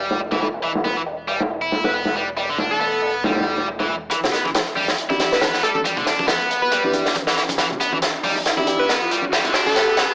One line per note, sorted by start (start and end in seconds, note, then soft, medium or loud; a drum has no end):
0.00 4.09 E1 medium
0.00 0.19 G3 medium
0.11 snare soft
0.20 closed hi-hat medium
0.32 0.40 E3 medium
0.32 snare soft
0.41 0.46 E3 medium
0.41 snare soft
0.41 closed hi-hat medium
0.54 closed hi-hat medium
0.63 0.71 E3 medium
0.63 closed hi-hat medium
0.75 snare medium
0.85 0.96 B3 medium
0.85 snare soft
0.85 closed hi-hat medium
0.96 1.00 E3 medium
1.06 closed hi-hat medium
1.28 1.40 G3 medium
1.28 open hi-hat medium
1.40 snare medium
1.50 closed hi-hat medium
1.62 1.93 E4 medium
1.72 snare soft
1.72 closed hi-hat medium
1.84 1.96 B4 medium
1.84 snare medium
1.94 2.15 B3 medium
1.94 closed hi-hat medium
2.05 snare soft
2.15 2.27 G3 medium
2.15 closed hi-hat medium
2.37 2.48 G3 medium
2.37 closed hi-hat medium
2.49 2.58 D3 loud
2.58 2.80 D4 medium
2.58 snare soft
2.58 closed hi-hat medium
2.71 3.14 A4 loud
2.80 3.23 B3 medium
2.80 closed hi-hat medium
3.02 closed hi-hat medium
3.24 3.67 G3 medium
3.24 snare medium
3.24 closed hi-hat medium
3.30 snare medium
3.30 closed hi-hat medium
3.36 snare medium
3.36 closed hi-hat medium
3.40 snare medium
3.40 closed hi-hat medium
3.46 closed hi-hat medium
3.58 snare soft
3.68 closed hi-hat medium
3.80 3.88 E3 medium
3.80 snare soft
3.89 3.94 E3 medium
3.89 closed hi-hat medium
4.10 4.19 E3 medium
4.10 kick loud
4.10 closed hi-hat medium
4.10 riser medium
4.23 snare medium
4.23 high bongo medium
4.23 low conga medium
4.32 4.44 B3 medium
4.32 snare soft
4.32 closed hi-hat medium
4.44 4.48 E3 medium
4.44 kick medium
4.44 high conga medium
4.55 snare loud
4.55 closed hi-hat medium
4.76 4.88 G3 medium
4.76 open hi-hat medium
4.76 high conga medium
4.88 snare medium
4.88 high bongo soft
4.98 closed hi-hat medium
5.09 5.18 D4 medium
5.09 5.40 E4 medium
5.09 5.18 E4 medium
5.09 5.18 G4 medium
5.09 kick loud
5.09 high bongo medium
5.09 high conga medium
5.19 5.35 D4 medium
5.19 5.35 E4 medium
5.19 5.35 G4 loud
5.19 snare soft
5.19 closed hi-hat medium
5.32 5.44 B4 medium
5.32 snare soft
5.41 5.62 B3 medium
5.41 snare loud
5.41 closed hi-hat medium
5.41 high conga medium
5.54 snare soft
5.63 5.74 G3 medium
5.63 5.71 A4 medium
5.63 kick loud
5.63 closed hi-hat medium
5.75 5.81 A4 medium
5.75 high conga medium
5.85 5.96 G3 medium
5.85 kick loud
5.85 closed hi-hat medium
5.96 6.06 D3 loud
5.96 kick medium
5.96 high bongo medium
5.96 low conga medium
6.06 6.27 D4 medium
6.06 snare soft
6.06 closed hi-hat medium
6.19 kick medium
6.19 high conga medium
6.28 6.71 B3 medium
6.28 snare loud
6.28 closed hi-hat medium
6.51 closed hi-hat medium
6.62 6.94 B4 medium
6.62 high bongo soft
6.71 7.14 G3 medium
6.71 kick loud
6.71 closed hi-hat medium
6.84 6.92 D4 medium
6.84 6.92 E4 medium
6.84 6.92 G4 medium
6.84 high conga medium
6.93 7.09 D4 medium
6.93 7.09 E4 medium
6.93 7.09 G4 loud
6.93 closed hi-hat medium
7.06 snare soft
7.15 kick loud
7.15 closed hi-hat medium
7.15 high conga medium
7.27 7.36 E3 medium
7.27 snare soft
7.37 7.42 E3 medium
7.37 snare soft
7.37 closed hi-hat medium
7.49 kick loud
7.49 closed hi-hat medium
7.49 high conga medium
7.58 7.67 E3 medium
7.58 snare soft
7.58 closed hi-hat medium
7.71 high bongo medium
7.71 low conga medium
7.80 7.92 B3 medium
7.80 closed hi-hat medium
7.93 7.97 E3 medium
7.93 high conga medium
8.02 snare soft
8.02 closed hi-hat medium
8.24 8.36 G3 medium
8.24 open hi-hat medium
8.24 high conga medium
8.36 high bongo soft
8.46 snare medium
8.46 closed hi-hat medium
8.57 8.66 D4 medium
8.57 8.66 E4 medium
8.57 8.88 E4 medium
8.57 8.66 G4 medium
8.57 high bongo soft
8.57 high conga medium
8.67 8.83 D4 medium
8.67 8.83 E4 medium
8.67 8.83 G4 loud
8.67 closed hi-hat medium
8.79 8.91 B4 medium
8.89 9.10 B3 medium
8.89 snare medium
8.89 closed hi-hat medium
8.89 high conga medium
9.11 9.23 G3 medium
9.11 closed hi-hat medium
9.22 high conga medium
9.33 9.44 G3 medium
9.33 snare medium
9.33 open hi-hat medium
9.44 9.54 D3 loud
9.44 closed hi-hat medium
9.44 high bongo medium
9.44 low conga medium
9.54 9.75 D4 medium
9.54 snare medium
9.66 10.10 A4 medium
9.66 open hi-hat medium
9.66 high conga loud
9.76 10.14 B3 medium
9.76 snare medium
9.76 closed hi-hat medium
9.97 snare medium
9.97 closed hi-hat medium
9.97 high conga medium
10.10 high bongo soft